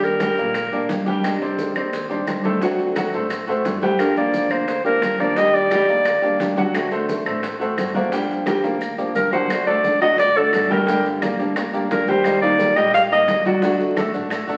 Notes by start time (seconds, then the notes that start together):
Already playing: D#2 D#3 G3 D4 G4 G5
0.03 A#4, high conga, maracas
0.20 G3 G4 G5, high bongo, high conga, claves, maracas
0.37 A#1 A#3 A#4 D5, high bongo, maracas
0.54 muted nylon-string guitar stroke, high bongo, high conga, claves, maracas
0.72 A#1 G3 A#3 D4 G4 A#4 D5, high bongo, high conga, maracas
0.89 C2 D#3 G3 D4 G4, high bongo, low bongo, high conga, maracas
1.06 G3 D4 G4 G5, high bongo, high conga, maracas
1.23 C3 D#3 G3 D4 G4, high bongo, high conga, claves, maracas
1.42 C4 C5 D5, high bongo, maracas
1.58 high bongo, high conga, maracas
1.75 D#2 C4 C5 D5, high bongo, high conga, claves, maracas
1.92 muted nylon-string guitar stroke, high bongo, high conga, maracas
2.09 D#3 G3 C4 D4 G4 C5 D5, high conga, maracas
2.26 D2 D#3 G3 D4 G4, high bongo, low bongo, high conga, claves, maracas
2.43 D#3 G3 A3 D4 G4 A4 C5, high bongo, high conga, maracas
2.61 D3 F#3 A3 C4 F#4 F#5, high bongo, high conga, maracas
2.79 high conga, maracas
2.96 F#3 F#4 F#5, high bongo, high conga, claves, maracas
3.13 A1 A3 A4 C5, high bongo, maracas
3.30 muted nylon-string guitar stroke, high bongo, high conga, claves, maracas
3.47 A1 A3 C4 F#4 A4 C5, high bongo, high conga, maracas
3.64 G1 D3 A3 C4 F#4, high bongo, low bongo, high conga, maracas
3.82 G3 A3 C4 F#4 G4 G5, high bongo, high conga, maracas
3.98 D3 F3 A#3 D4 G4 A#4, high bongo, high conga, claves, maracas
4.17 A#3 A#4 D5, high bongo, high conga, maracas
4.33 high bongo, high conga, maracas
4.50 D2 A#3 A#4 C5 D5, high bongo, high conga, claves, maracas
4.68 muted nylon-string guitar stroke, high bongo, high conga, maracas
4.84 F3 A#3 D4 G4 A#4 D5, high conga, maracas
5.01 D#2 F3 A#3 D4 G4, high bongo, low bongo, high conga, claves, maracas
5.20 F3 A#3 D4 G4 A#4 D5, high bongo, high conga, maracas
5.36 D#3 G3 D4 G4 D#5 G5, high bongo, high conga, maracas
5.54 D5, high conga, maracas
5.71 G3 G4 G5, high bongo, high conga, claves, maracas
5.88 D#2 A#3 A#4 D5, high bongo, maracas
6.05 muted nylon-string guitar stroke, high bongo, high conga, claves, maracas
6.22 D#2 G3 A#3 D4 G4 A#4 D5, high bongo, high conga, maracas
6.39 D2 D#3 G3 D4 G4, high bongo, low bongo, high conga, maracas
6.56 F#3 G3 D4 F#4 G4 F#5, high bongo, high conga, maracas
6.73 D3 A3 C4 F#4, high bongo, high conga, claves, maracas
6.91 A3 A4 C5, high bongo, high conga, maracas
7.09 high bongo, high conga, maracas
7.26 A1 A3 A4 C5, high bongo, high conga, claves, maracas
7.43 muted nylon-string guitar stroke, high bongo, high conga, maracas
7.59 A3 C4 F#4 A4 C5, high conga, maracas
7.77 G1 D3 A3 C4 F#4, high bongo, low bongo, high conga, claves, maracas
7.94 A3 A#3 C4 F#4 A#4 D5, high bongo, high conga, maracas
8.11 D3 F3 G3 A#3 D4 G4 G5, high bongo, high conga, maracas
8.30 high conga, maracas
8.46 G3 G4 G5, high bongo, high conga, claves, maracas
8.63 D2 A#3 A#4 D5, high bongo, maracas
8.80 muted nylon-string guitar stroke, high conga, claves, maracas
8.98 C2 F3 A#3 D4 G4 A#4 D5, high conga, maracas
9.15 D2 F3 A#3 D4 G4 A#4, low bongo, high conga, maracas
9.32 F3 F#3 A#3 D4 F#4 G4 C5 F#5, low bongo, high conga, maracas
9.49 D3 A3 D4 F#4, high bongo, high conga, claves, maracas
9.66 A3 A4 D5, high bongo, high conga, maracas
9.84 D3 A3 D4 F#4, high bongo, high conga, maracas
10.01 D2 F#3 A3 D4 F#4 D#5 F#5, high bongo, high conga, claves, maracas
10.18 D5, muted nylon-string guitar stroke, high bongo, high conga, maracas
10.36 A3 D4 F#4 A4 D5, high conga, maracas
10.53 G1 D3 A3 D4 F#4, high bongo, low bongo, high conga, claves, maracas
10.70 G3 G4 A#4 G5, high bongo, high conga, maracas
10.87 D3 G3 A#3 D4 G4 G5, high bongo, high conga, maracas
11.05 maracas
11.22 G3 A#3 D4 G4 A#4 D5, high bongo, high conga, claves, maracas
11.39 D2 G3 A#3 D4 G4, high bongo, maracas
11.56 A#3 A#4 D5, muted nylon-string guitar stroke, high bongo, high conga, claves, maracas
11.73 G3 A#3 D4 G4 A#4 D5, high bongo, high conga, maracas
11.90 D#2 G3 A#3 D4 G4 A#4, high bongo, low bongo, high conga, maracas
12.07 G3 G4 C5 G5, high bongo, high conga, maracas
12.24 D#3 G3 A#3 D#4 G4, high bongo, high conga, claves, maracas
12.42 A#3 D#4 A#4 D5, high bongo, high conga, maracas
12.59 G3 A#3 D#4 G4, high bongo, high conga, maracas
12.76 A#1 G3 A#3 D#4 G4 D#5 G5, high conga, claves, maracas
12.93 F5, muted nylon-string guitar stroke, high bongo, high conga, maracas
13.10 G3 A#3 D#4 G4 A#4 D#5, high conga, maracas
13.28 D2 G3 A#3 D#4 G4, high bongo, low bongo, high conga, claves, maracas
13.45 F#3 F#4 D5 F#5, high bongo, high conga, maracas
13.62 D3 F#3 A3 D4 F#4 F#5, high bongo, high conga, maracas
13.80 high conga, maracas
13.96 D3 A3 D4 F#4 A4 D5, high bongo, high conga, claves, maracas
14.13 A1 A3 D4 F#4, high bongo, maracas
14.30 A3 A4 D5, muted nylon-string guitar stroke, high bongo, high conga, claves, maracas
14.47 C2 A3 D4 F#4 A4 D5, high bongo, high conga, maracas